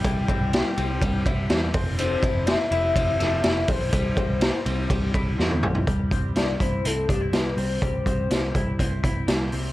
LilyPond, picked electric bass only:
\new Staff \with { instrumentName = "Picked electric bass" } { \clef bass \time 4/4 \key c \major \tempo 4 = 124 c,8 r16 c,8 r16 c,8 c,8 c,8 e,8 f,,8~ | f,,8 r16 f,,8 r16 f,,8 f,,8 f,,8 f,,8 b,,8 | c,8 r16 c,8 r16 c,8 c,8 c,8 e,8 b,,8 | c,8 c,8 c,8 c,8 c,8 c,8 c,8 c,8 |
c,8 c,8 c,8 c,8 c,8 c,8 c,8 c,8 | }